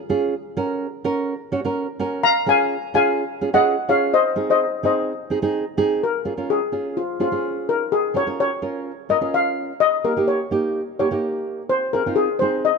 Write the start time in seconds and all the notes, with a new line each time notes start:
0.09 C#4 F4 G#4
0.57 C#4 F#4 A#4
1.04 C#4 F#4 A#4
1.52 C#4 F#4 C#5
1.65 C#4 F#4 A#4
1.99 C#4 F#4 A#4
2.23 F5 A#5
2.46 C#4 F4 G#4 F5 G#5
2.94 C#4 F4 G#4 F5 G#5
3.41 C#4 F4 G#4
3.53 C#4 F4 G#4 D#5 F#5
3.89 C#4 F4 G#4 C#5 F5
4.14 C5 D#5
4.36 C4 D#4 G#4
4.50 C5 D#5
4.83 C4 D#4 G#4 C5 D#5
5.30 C4 D#4 G#4
5.42 C4 D#4 G#4
5.77 C4 D#4 G#4
6.04 A#4
6.25 C#4 F4 G#4
6.37 C#4 F4 A#4
6.50 G#4
6.72 C#4 F4 G#4
6.97 F4
7.20 C#4 F4 G#4
7.31 C#4 F4 G#4
7.69 A#4
7.92 G#4
8.14 C#4 F4 A#4 C#5
8.27 C#4 F4 A#4
8.40 C#5
8.62 C#4 F4 A#4
9.09 C#4 F4 A#4 D#5
9.21 C#4 F4 A#4
9.34 F5
9.80 D#5
10.04 A#3 D#4 G4 A#4
10.17 A#3 D#4 G4
10.28 C#5
10.51 A#3 D#4 G4
10.99 A#3 D#4 G4 C#5
11.11 A#3 D#4 G4
11.69 C5
11.93 C4 D#4 G#4 A#4
12.06 C4 D#4 F4
12.16 G#4
12.39 C4 D#4 G#4 C5
12.65 D#5